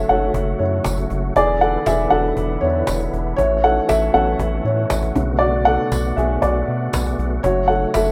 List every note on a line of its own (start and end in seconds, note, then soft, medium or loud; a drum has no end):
0.00 1.34 C#3 medium
0.00 1.34 F#3 medium
0.00 1.34 A3 medium
0.00 1.34 F#4 medium
0.00 1.37 F#4 medium
0.00 0.11 A4 medium
0.00 0.59 C#5 loud
0.00 1.38 E5 medium
0.00 0.09 F#5 medium
0.09 0.30 F#1 medium
0.09 1.32 F#3 soft
0.09 1.32 A3 soft
0.09 1.33 C#4 medium
0.09 0.57 A4 medium
0.09 0.61 F#5 medium
0.34 0.55 F#1 loud
0.34 cajon bass loud
0.59 0.81 F#2 loud
0.59 1.07 E4 medium
0.59 1.07 C#5 medium
0.59 cajon slap soft
0.84 1.06 F#1 loud
0.84 cajon bass loud
0.84 cajon slap loud
0.84 tambourine medium
0.97 cajon bass medium
1.10 1.31 F#1 loud
1.10 cajon bass medium
1.10 cajon slap soft
1.36 1.78 E1 loud
1.36 3.37 D3 medium
1.36 3.36 E3 medium
1.36 3.37 B3 medium
1.36 3.37 E4 medium
1.36 1.60 G#4 medium
1.36 1.60 D5 loud
1.36 cajon bass medium
1.61 1.85 A4 medium
1.61 1.87 F#5 medium
1.61 cajon slap soft
1.86 2.07 E1 loud
1.86 2.10 G#4 medium
1.86 2.13 E5 medium
1.86 cajon bass loud
1.86 cajon slap medium
1.86 tambourine medium
2.10 2.33 E1 medium
2.10 3.34 F#3 medium
2.10 3.35 D4 medium
2.10 3.34 G#4 soft
2.10 2.59 A4 medium
2.10 2.63 F#5 loud
2.37 2.58 E1 medium
2.37 cajon bass medium
2.61 2.83 E2 medium
2.61 3.10 E4 medium
2.61 3.09 C#5 medium
2.61 cajon slap soft
2.87 3.09 E1 loud
2.87 cajon bass loud
2.87 cajon slap loud
2.87 tambourine medium
3.00 cajon bass medium
3.13 3.34 E1 medium
3.13 cajon bass medium
3.13 cajon slap soft
3.36 3.80 A1 loud
3.36 5.14 E3 medium
3.36 8.12 A3 medium
3.36 5.14 C#4 medium
3.36 3.62 E4 medium
3.36 8.12 F#4 medium
3.36 3.64 C#5 loud
3.36 cajon bass medium
3.64 3.87 A4 medium
3.64 3.90 F#5 loud
3.64 cajon slap soft
3.89 4.10 A1 loud
3.89 4.12 A4 medium
3.89 4.15 E5 medium
3.89 cajon bass medium
3.89 cajon slap medium
3.89 tambourine medium
4.12 4.35 A1 medium
4.12 5.11 F#3 medium
4.12 5.11 B3 soft
4.12 5.12 C#4 medium
4.12 4.61 A4 medium
4.12 4.61 F#5 medium
4.12 cajon slap soft
4.39 4.60 A1 medium
4.39 cajon bass loud
4.65 4.86 A2 loud
4.65 5.13 E4 medium
4.65 5.13 C#5 medium
4.65 cajon slap soft
4.90 5.12 A1 medium
4.90 cajon bass loud
4.90 cajon slap loud
4.90 tambourine medium
5.03 cajon bass medium
5.15 5.78 B1 medium
5.15 7.42 B2 medium
5.15 7.15 C#3 medium
5.15 7.14 D3 soft
5.15 7.14 A3 soft
5.15 7.42 B3 medium
5.15 cajon bass loud
5.39 5.65 F#4 medium
5.39 5.66 D5 medium
5.39 cajon slap soft
5.65 6.14 A4 medium
5.65 6.18 F#5 loud
5.65 cajon slap soft
5.92 6.13 B1 medium
5.92 cajon bass loud
5.92 cajon slap medium
5.92 tambourine medium
6.17 6.38 B1 loud
6.17 6.42 G#4 medium
6.17 6.43 E5 medium
6.17 cajon bass medium
6.17 cajon slap soft
6.42 6.63 B1 medium
6.42 7.15 F#4 medium
6.42 7.14 D5 medium
6.42 cajon bass loud
6.68 6.89 B2 loud
6.68 cajon slap soft
6.93 7.15 B1 medium
6.93 cajon bass loud
6.93 cajon slap loud
6.93 tambourine medium
7.06 cajon bass medium
7.19 7.39 B1 medium
7.19 cajon bass medium
7.19 cajon slap soft
7.43 7.86 F#1 loud
7.43 8.12 C#3 medium
7.43 8.12 F#3 medium
7.43 8.12 A3 medium
7.43 8.12 C#4 medium
7.43 7.69 F#4 medium
7.43 7.70 C#5 loud
7.43 cajon bass loud
7.68 7.93 A4 medium
7.68 7.92 F#5 loud
7.68 cajon slap soft
7.94 8.12 F#1 loud
7.94 8.12 A4 medium
7.94 8.12 E5 medium
7.94 cajon bass loud
7.94 cajon slap medium
7.94 tambourine medium